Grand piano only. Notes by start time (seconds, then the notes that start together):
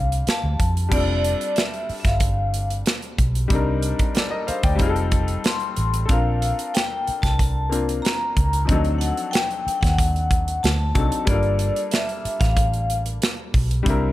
Already playing: G3 C4 D4 F4 A4
0.89 G3 C4 D4
0.94 F4 A4
3.48 G3 C4 D4
3.53 D#4 A#4
4.16 A4 D5
4.31 A#4 D#5
4.47 C5 F5
4.64 D5 G5
4.75 G3 C4 D#4
4.81 F4 G#4
4.89 A4
6.06 C4 D4 A4
6.11 F4 A#4
7.69 A#3 C4 D4 F4 A#4
8.65 F3 C4 D4
8.71 F#3 D#4 A4
10.95 F#3 C4 D4 D#4 A4
11.25 G3 A#3 D4
11.30 F4 A4
13.83 G3 C4 D4
13.88 E4 A#4